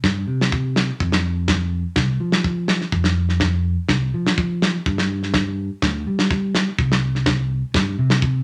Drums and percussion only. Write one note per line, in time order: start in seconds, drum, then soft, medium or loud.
0.04 kick medium
0.04 snare medium
0.41 snare medium
0.52 kick medium
0.76 snare medium
1.00 kick medium
1.12 snare medium
1.48 kick medium
1.48 snare medium
1.96 kick medium
1.96 snare medium
2.32 snare medium
2.44 kick medium
2.68 snare medium
2.81 snare soft
2.92 kick medium
3.04 snare medium
3.29 snare soft
3.40 kick medium
3.40 snare medium
3.89 kick medium
3.89 snare medium
4.27 snare medium
4.38 kick loud
4.62 snare medium
4.86 kick medium
4.98 snare medium
5.23 snare soft
5.34 kick medium
5.34 snare medium
5.82 kick medium
5.82 snare medium
6.19 snare medium
6.31 kick medium
6.31 snare soft
6.55 snare medium
6.79 kick medium
6.92 snare medium
7.15 snare soft
7.26 kick loud
7.26 snare medium
7.74 kick medium
7.74 snare medium
8.10 snare medium
8.22 kick medium